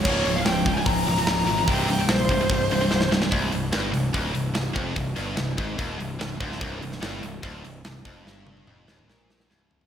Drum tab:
CC |x---------------|----------------|----------------|----------------|
HH |--o-o-o-o-o-o-o-|o-o-o-o-o-o-----|o-o-o-o-o-o-o-o-|o-o-o-o-o-o-o-o-|
SD |----o-------o---|----o-------oooo|----o-------o---|----o-------o--o|
T1 |----------------|----------------|----------------|----------------|
T2 |----------------|----------------|----------------|----------------|
FT |----------------|----------------|----------------|----------------|
BD |o-----o-o-------|o-----o-o-------|o-------o-----o-|o-----o-o-----o-|

CC |----------------|----------------|
HH |o-o-o-o-o-o-o-o-|----------------|
SD |---oo-------o---|o-----o-o-ooo---|
T1 |----------------|--oo------------|
T2 |----------------|----o--o--------|
FT |----------------|--------------oo|
BD |o-------o-----o-|----------------|